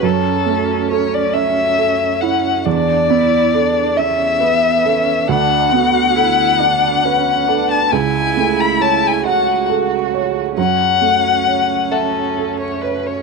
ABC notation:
X:1
M:6/8
L:1/16
Q:3/8=45
K:F#m
V:1 name="Violin"
A4 c d e4 f2 | d6 e6 | f8- f3 a | g3 b a g f2 z4 |
f6 A3 c B c |]
V:2 name="Felt piano"
F,,2 A,2 A2 e2 A2 E2 | E,,2 B,2 A2 e2 B2 A2 | D,,2 B,2 A2 f2 B2 A2 | C,,2 A,2 c2 f2 A2 c2 |
F,,2 A,2 c2 e2 A2 c2 |]
V:3 name="Cello"
C12 | D2 E2 D2 C2 B,2 C2 | D2 F2 E2 D2 C2 D2 | E6 F6 |
C12 |]